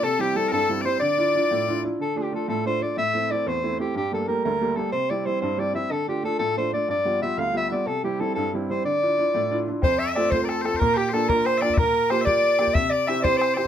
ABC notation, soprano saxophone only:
X:1
M:6/8
L:1/16
Q:3/8=123
K:Dm
V:1 name="Soprano saxophone"
A2 G2 A2 A2 z2 c2 | d8- d2 z2 | A2 G2 A2 A2 c2 d2 | e4 d2 c4 G2 |
G2 A2 B2 B4 A2 | c2 d2 c2 c2 d2 e2 | A2 G2 A2 A2 c2 d2 | d4 e2 f2 e3/2 e/2 d2 |
A2 G2 A2 A2 z2 c2 | d8- d2 z2 | c2 e2 d2 c3/2 B/2 A2 A2 | B2 G2 A2 B2 c2 d2 |
B4 c2 d6 | e2 d2 e3/2 d/2 c2 c2 c2 |]